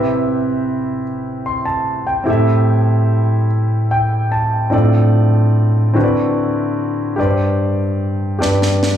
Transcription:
0.00 1.01 C3 medium
0.00 2.22 C4 medium
0.00 2.23 E4 soft
0.00 2.24 G4 soft
0.00 2.25 B4 soft
0.00 2.25 E5 medium
1.46 1.65 C6 soft
1.65 2.05 A5 medium
2.07 2.46 G5 soft
2.24 3.46 A2 soft
2.24 4.67 C4 medium
2.24 4.68 E4 medium
2.24 4.68 G4 medium
2.28 4.69 A4 soft
2.28 4.70 E5 medium
3.91 4.29 G5 medium
4.32 4.70 A5 medium
4.70 5.91 A2 medium
4.70 5.92 C4 medium
4.70 5.95 D4 soft
4.70 4.79 E4 soft
4.70 5.95 A4 soft
4.70 5.96 D5 medium
4.78 5.98 F4 soft
5.94 7.14 D3 medium
5.94 7.17 C4 medium
5.94 7.17 E4 soft
5.94 7.18 F#4 medium
5.94 7.16 B4 medium
5.94 6.03 C5 soft
6.04 7.18 D5 medium
7.16 8.36 G2 soft
7.16 8.37 G4 medium
7.16 7.24 B4 soft
7.16 8.40 D5 medium
7.24 8.44 C5 soft
8.39 8.97 G2 medium
8.39 8.97 G4 medium
8.39 8.97 B4 soft
8.39 8.97 D5 medium
8.39 snare soft
8.62 snare soft
8.83 snare medium

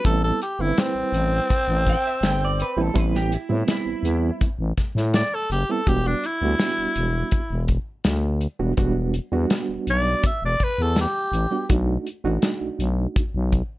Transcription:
0.04 0.32 A1 loud
0.04 0.41 G3 medium
0.04 0.41 B3 medium
0.04 0.41 C4 medium
0.04 0.41 E4 medium
0.04 0.22 A4 medium
0.04 kick loud
0.04 closed hi-hat medium
0.24 0.40 A4 medium
0.42 0.63 G4 medium
0.42 closed hi-hat soft
0.59 0.73 G1 medium
0.59 1.56 G3 medium
0.59 1.57 C4 medium
0.59 1.57 E4 medium
0.59 0.81 E4 medium
0.59 1.56 B4 medium
0.78 2.93 C4 loud
0.78 snare loud
0.78 closed hi-hat medium
0.95 1.04 A1 soft
1.12 1.40 A1 medium
1.12 closed hi-hat medium
1.50 kick loud
1.50 closed hi-hat medium
1.68 1.96 A1 loud
1.87 2.06 G5 medium
1.87 kick medium
1.87 closed hi-hat medium
2.07 2.26 E5 medium
2.21 2.63 G1 medium
2.21 snare loud
2.21 closed hi-hat medium
2.26 2.43 G5 medium
2.45 2.60 D5 medium
2.60 2.81 B4 medium
2.60 closed hi-hat medium
2.77 2.91 A1 medium
2.77 2.89 G3 medium
2.77 2.90 B3 medium
2.77 2.89 C4 medium
2.77 2.90 E4 medium
2.81 2.98 A4 medium
2.94 3.37 A1 loud
2.94 3.31 G3 medium
2.94 3.32 B3 medium
2.94 3.32 C4 medium
2.94 3.32 E4 medium
2.94 3.15 B4 medium
2.94 kick loud
2.94 closed hi-hat medium
3.15 3.34 G4 medium
3.15 snare soft
3.32 3.68 E4 medium
3.32 closed hi-hat medium
3.49 3.64 A2 medium
3.49 4.47 G3 medium
3.49 4.47 B3 medium
3.49 4.47 C4 medium
3.49 4.47 E4 medium
3.68 4.41 E4 medium
3.68 snare medium
3.68 closed hi-hat medium
3.86 3.95 A1 soft
4.03 4.31 E2 medium
4.03 closed hi-hat medium
4.41 kick loud
4.41 closed hi-hat medium
4.59 4.73 A1 medium
4.77 kick medium
4.77 snare soft
4.77 closed hi-hat medium
4.95 5.23 A2 medium
4.95 snare soft
5.14 5.36 D5 medium
5.14 snare loud
5.14 closed hi-hat medium
5.35 5.50 A4 medium
5.50 5.64 F#1 medium
5.50 5.73 G4 medium
5.50 closed hi-hat medium
5.69 5.81 G3 medium
5.69 5.81 B3 medium
5.69 5.81 C4 medium
5.69 5.82 E4 medium
5.69 5.90 A4 medium
5.87 6.15 E1 loud
5.87 6.23 G3 medium
5.87 6.24 B3 medium
5.87 6.24 D4 medium
5.87 6.24 F#4 medium
5.87 6.09 G4 medium
5.87 kick loud
5.87 closed hi-hat medium
6.07 6.27 D4 medium
6.24 7.66 E4 medium
6.24 closed hi-hat medium
6.41 6.55 D2 medium
6.41 7.39 G3 medium
6.41 7.39 B3 medium
6.41 7.39 D4 medium
6.41 7.39 F#4 medium
6.59 snare loud
6.59 closed hi-hat medium
6.79 6.87 E1 soft
6.96 7.24 E1 medium
6.96 closed hi-hat medium
7.31 kick loud
7.31 closed hi-hat medium
7.51 7.78 E1 medium
7.68 kick medium
7.68 closed hi-hat medium
8.04 8.47 D2 medium
8.04 snare medium
8.04 closed hi-hat medium
8.41 closed hi-hat medium
8.59 8.74 E1 medium
8.59 8.72 G3 medium
8.59 8.72 B3 medium
8.59 8.72 D4 medium
8.59 8.72 F#4 medium
8.77 9.20 E1 medium
8.77 9.14 G3 medium
8.77 9.15 B3 medium
8.77 9.15 D4 medium
8.77 9.15 F#4 medium
8.77 kick loud
8.77 closed hi-hat medium
9.14 closed hi-hat medium
9.32 9.46 E2 medium
9.32 10.30 G3 medium
9.32 10.30 B3 medium
9.32 10.30 D4 medium
9.32 10.30 F#4 medium
9.50 snare loud
9.50 closed hi-hat medium
9.69 9.78 E1 soft
9.87 10.15 B1 medium
9.87 10.24 D5 medium
9.87 closed hi-hat medium
10.23 10.43 E5 medium
10.23 kick loud
10.23 closed hi-hat medium
10.42 10.56 E1 medium
10.42 10.65 D5 medium
10.60 10.84 B4 medium
10.60 kick medium
10.60 closed hi-hat medium
10.78 11.06 E2 medium
10.83 10.98 A4 medium
10.96 snare loud
10.96 closed hi-hat medium
11.01 11.70 G4 medium
11.32 11.47 A1 medium
11.32 closed hi-hat medium
11.51 11.64 G3 medium
11.51 11.64 B3 medium
11.51 11.64 D4 medium
11.51 11.64 F#4 medium
11.69 11.98 B1 loud
11.69 12.06 A3 medium
11.69 12.07 D4 medium
11.69 12.07 D#4 medium
11.69 12.07 F#4 medium
11.69 kick loud
11.69 closed hi-hat medium
12.07 closed hi-hat medium
12.24 12.38 A1 loud
12.24 13.22 A3 medium
12.24 13.22 D4 medium
12.24 13.22 D#4 medium
12.24 13.22 F#4 medium
12.42 snare loud
12.42 closed hi-hat medium
12.61 12.70 B1 soft
12.79 13.07 B1 medium
12.79 closed hi-hat medium
13.16 kick loud
13.16 closed hi-hat medium
13.34 13.62 B1 medium
13.52 kick medium
13.52 closed hi-hat medium

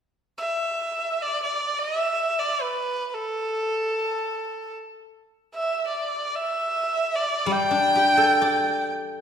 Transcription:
0.38 1.23 E5 medium
1.22 1.42 D5 medium
1.43 1.80 D5 medium
1.78 1.98 D#5 medium
1.98 2.40 E5 medium
2.39 2.63 D5 medium
2.61 3.09 B4 medium
3.09 3.16 B4 soft
3.14 4.75 A4 medium
5.54 5.85 E5 medium
5.87 6.37 D5 medium
6.35 7.17 E5 medium
7.15 7.54 D5 medium
7.46 9.21 G3 soft
7.52 8.91 G5 medium
7.71 9.21 D4 soft
7.96 9.21 G4 soft
8.17 9.21 A4 soft
8.42 9.21 D5 soft

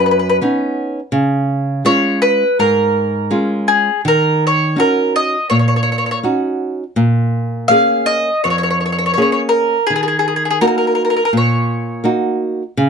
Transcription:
0.00 0.39 F#2 medium
0.06 0.10 B4 soft
0.11 0.18 B4 medium
0.19 0.27 B4 soft
0.30 0.36 B4 medium
0.41 0.99 B3 soft
0.41 0.99 C#4 soft
0.41 1.00 D#4 soft
1.12 1.82 C#3 medium
1.85 2.43 G#3 soft
1.85 2.43 C#4 soft
1.85 2.43 F4 soft
1.85 2.20 C#5 medium
2.22 2.58 B4 medium
2.59 3.29 G#2 medium
2.59 3.65 A#4 medium
3.31 3.88 G#3 soft
3.31 3.89 C#4 soft
3.31 3.89 F4 soft
3.68 4.00 G#4 medium
4.05 4.75 D#3 medium
4.05 4.44 A#4 medium
4.47 4.79 C#5 medium
4.76 5.35 C#4 soft
4.76 5.35 D#4 soft
4.76 5.36 F#4 soft
4.76 5.13 A#4 medium
5.16 5.48 D#5 medium
5.50 6.22 A#2 medium
5.50 5.57 C#5 medium
5.59 5.65 C#5 soft
5.68 5.74 C#5 soft
5.76 5.82 C#5 soft
5.83 5.89 C#5 medium
5.92 5.97 C#5 soft
5.98 6.04 C#5 soft
6.06 6.10 C#5 soft
6.11 6.18 C#5 medium
6.23 6.82 C#4 soft
6.23 6.83 D#4 soft
6.23 6.83 F#4 soft
6.96 7.68 A#2 medium
7.68 8.28 A#3 soft
7.68 8.29 C#4 soft
7.68 8.30 G#4 soft
7.68 8.08 F5 medium
8.06 8.43 D#5 loud
8.44 9.15 F2 medium
8.44 8.49 C#5 medium
8.50 8.57 C#5 soft
8.58 8.62 C#5 medium
8.63 8.69 C#5 soft
8.71 8.79 C#5 medium
8.81 8.84 C#5 soft
8.86 8.91 C#5 soft
8.92 8.97 C#5 soft
8.98 9.05 C#5 medium
9.06 9.12 C#5 medium
9.14 9.75 A#3 soft
9.14 9.21 C#5 medium
9.18 9.76 C#4 soft
9.18 9.76 G#4 soft
9.22 9.31 C#5 soft
9.32 9.41 C#5 medium
9.49 9.84 A#4 medium
9.87 10.60 D#3 soft
9.87 9.94 G#4 medium
9.96 10.02 G#4 medium
10.03 10.07 G#4 soft
10.08 10.18 G#4 soft
10.19 10.27 G#4 medium
10.28 10.35 G#4 soft
10.36 10.43 G#4 soft
10.45 10.49 G#4 soft
10.51 10.58 G#4 medium
10.61 11.19 A#3 soft
10.61 11.20 D#4 soft
10.61 11.19 F#4 medium
10.61 10.66 A#4 medium
10.67 10.76 A#4 medium
10.78 10.85 A#4 soft
10.87 10.94 A#4 soft
10.95 11.02 A#4 soft
11.05 11.09 A#4 soft
11.10 11.15 A#4 soft
11.16 11.23 A#4 soft
11.25 11.31 A#4 medium
11.33 12.03 A#2 medium
11.37 12.03 C#5 medium
12.04 12.62 A#3 soft
12.04 12.62 D#4 soft
12.04 12.62 F#4 soft
12.77 12.89 C#3 medium

